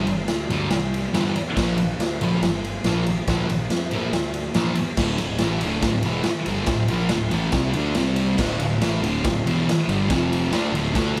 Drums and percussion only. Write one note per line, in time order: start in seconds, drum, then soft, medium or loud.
0.07 ride medium
0.28 snare loud
0.28 ride loud
0.50 ride medium
0.70 snare loud
0.70 ride loud
0.94 ride medium
1.14 snare loud
1.14 ride loud
1.36 ride medium
1.57 kick loud
1.57 snare loud
1.57 crash loud
1.78 ride medium
2.00 snare loud
2.00 ride loud
2.21 ride medium
2.42 snare loud
2.42 ride loud
2.64 ride medium
2.84 snare loud
2.84 ride loud
3.06 ride medium
3.27 kick loud
3.27 snare loud
3.27 ride medium
3.50 ride medium
3.70 snare loud
3.70 ride loud
3.91 ride medium
4.13 snare loud
4.13 ride medium
4.34 ride medium
4.54 snare loud
4.54 ride loud
4.75 ride medium
4.97 kick loud
4.97 snare loud
4.97 crash loud
5.18 ride medium
5.38 snare loud
5.38 ride loud
5.61 ride medium
5.82 kick loud
5.82 snare loud
5.82 ride loud
6.03 ride medium
6.23 snare loud
6.23 ride loud
6.46 ride medium
6.66 kick loud
6.66 snare loud
6.66 ride loud
6.88 ride medium
7.09 snare loud
7.09 ride loud
7.31 ride medium
7.52 kick loud
7.52 snare loud
7.52 ride loud
7.73 ride medium
7.95 snare loud
7.95 ride loud
8.16 ride medium
8.38 kick loud
8.38 snare loud
8.38 crash loud
8.60 ride medium
8.81 snare loud
8.81 ride loud
9.04 ride medium
9.24 kick loud
9.24 snare loud
9.24 ride loud
9.47 ride medium
9.69 snare loud
9.69 ride loud
9.89 ride medium
10.10 kick loud
10.10 snare loud
10.10 ride loud
10.33 ride medium
10.52 snare loud
10.52 ride loud
10.75 ride medium
10.95 kick loud
10.95 snare loud
10.95 ride loud